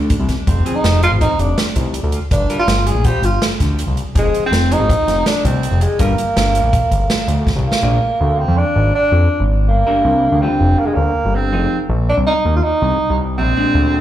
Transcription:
Already playing: analog synth bass D2
0.10 kick, closed hi-hat
0.20 analog synth bass C2
0.29 kick, snare, closed hi-hat
0.47 analog synth bass F1, tenor saxophone C4, kick, closed hi-hat
0.65 hollow-body jazz guitar F3 C4 G#4, closed hi-hat
0.75 tenor saxophone D#4
0.84 analog synth bass F1, snare, closed hi-hat
1.03 tenor saxophone F4, closed hi-hat
1.11 analog synth bass G#1
1.21 hollow-body jazz guitar F3 C4 D#4, tenor saxophone D#4, kick, closed hi-hat
1.39 analog synth bass F1, tenor saxophone D4, closed hi-hat
1.58 snare, closed hi-hat
1.76 analog synth bass C2, kick, closed hi-hat
1.94 closed hi-hat
2.03 analog synth bass D2
2.12 closed hi-hat
2.31 analog synth bass G1, tenor saxophone D4, kick, closed hi-hat
2.50 hollow-body jazz guitar G3 F4 A#4, closed hi-hat
2.59 tenor saxophone F4
2.67 analog synth bass G1, snare, closed hi-hat
2.87 tenor saxophone G#4, closed hi-hat
2.95 analog synth bass A#1
3.04 hollow-body jazz guitar G3 F4 C5, tenor saxophone G4, kick, closed hi-hat
3.23 analog synth bass G1, tenor saxophone F4, closed hi-hat
3.42 snare, closed hi-hat
3.60 analog synth bass D2, kick, snare, closed hi-hat
3.79 closed hi-hat
3.87 analog synth bass C2
3.97 closed hi-hat
4.15 analog synth bass F1, hollow-body jazz guitar F3 C4 G#4, tenor saxophone G#3, kick, closed hi-hat
4.34 closed hi-hat
4.46 tenor saxophone C4
4.51 analog synth bass F1, snare, closed hi-hat
4.71 hollow-body jazz guitar F3 C4 G#4, tenor saxophone D#4, closed hi-hat
4.80 analog synth bass G#1
4.89 kick, closed hi-hat
5.08 analog synth bass F1, snare, closed hi-hat
5.26 tenor saxophone D4, snare, closed hi-hat
5.45 analog synth bass C2, tenor saxophone C4, kick, closed hi-hat
5.63 closed hi-hat
5.71 analog synth bass F1
5.81 tenor saxophone G#3, closed hi-hat
5.99 analog synth bass G1, hollow-body jazz guitar G3 F4 A#4, tenor saxophone A#3, kick, closed hi-hat
6.18 closed hi-hat
6.36 analog synth bass G1, snare, closed hi-hat
6.55 closed hi-hat
6.63 analog synth bass A#1
6.73 kick, closed hi-hat
6.91 analog synth bass G1, kick, closed hi-hat
7.10 snare, closed hi-hat
7.28 analog synth bass D2, closed hi-hat
7.47 kick, snare
7.56 analog synth bass C2, kick
7.67 tenor saxophone A#3
7.72 snare
7.83 analog synth bass A#1, hollow-body jazz guitar A#3 G#4 D5
8.21 analog synth bass D2
8.39 tenor saxophone C4
8.48 analog synth bass F2
8.57 tenor saxophone D4
8.76 analog synth bass G#1
8.95 tenor saxophone D4
9.12 analog synth bass F2
9.40 analog synth bass G#1
9.68 analog synth bass G1, tenor saxophone A#3
9.87 hollow-body jazz guitar G3 D4 A#4
10.04 analog synth bass C2
10.32 analog synth bass D2
10.42 hollow-body jazz guitar G3 D4 F4, tenor saxophone C4
10.60 analog synth bass F1
10.79 tenor saxophone A#3
10.86 tenor saxophone G#3
10.94 analog synth bass D2, tenor saxophone A#3
11.25 analog synth bass G1
11.35 tenor saxophone C4
11.52 analog synth bass F1, hollow-body jazz guitar F3 D#4 G#4
11.89 analog synth bass A#1
12.09 tenor saxophone D4
12.17 analog synth bass C2
12.27 tenor saxophone D#4
12.45 analog synth bass D#2
12.56 tenor saxophone F4
12.63 tenor saxophone D#4
12.82 analog synth bass C2
13.10 analog synth bass C2
13.38 analog synth bass A#1, tenor saxophone C4
13.57 hollow-body jazz guitar A#2 G#3 D4
13.75 analog synth bass D2

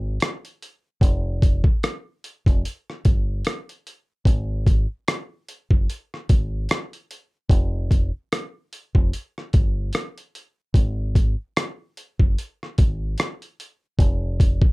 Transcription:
Already playing: fingered electric bass G#1
0.20 cross-stick, closed hi-hat
0.45 closed hi-hat
0.62 closed hi-hat
1.01 fingered electric bass F1, kick, closed hi-hat
1.42 kick, closed hi-hat
1.64 kick
1.83 cross-stick, closed hi-hat
2.24 closed hi-hat
2.46 fingered electric bass F1, kick, closed hi-hat
2.65 closed hi-hat
2.90 cross-stick
3.05 fingered electric bass G1, kick, closed hi-hat
3.45 cross-stick, closed hi-hat
3.69 closed hi-hat
3.87 closed hi-hat
4.25 fingered electric bass G#1, kick, closed hi-hat
4.67 kick, closed hi-hat
5.08 cross-stick, closed hi-hat
5.49 closed hi-hat
5.71 fingered electric bass F#1, kick
5.90 closed hi-hat
6.14 cross-stick
6.29 fingered electric bass G#1, kick, closed hi-hat
6.69 cross-stick, closed hi-hat
6.93 closed hi-hat
7.11 closed hi-hat
7.50 fingered electric bass F1, kick, closed hi-hat
7.91 kick, closed hi-hat
8.32 cross-stick, closed hi-hat
8.73 closed hi-hat
8.95 fingered electric bass F1, kick
9.13 closed hi-hat
9.38 cross-stick
9.53 fingered electric bass G1, kick, closed hi-hat
9.93 cross-stick, closed hi-hat
10.18 closed hi-hat
10.35 closed hi-hat
10.74 fingered electric bass G#1, kick, closed hi-hat
11.15 kick, closed hi-hat
11.57 cross-stick, closed hi-hat
11.97 closed hi-hat
12.20 fingered electric bass F#1, kick
12.38 closed hi-hat
12.63 cross-stick
12.78 fingered electric bass G#1, kick, closed hi-hat
13.18 cross-stick, closed hi-hat
13.42 closed hi-hat
13.60 closed hi-hat
13.99 fingered electric bass F1, kick, closed hi-hat
14.40 kick, closed hi-hat
14.62 kick

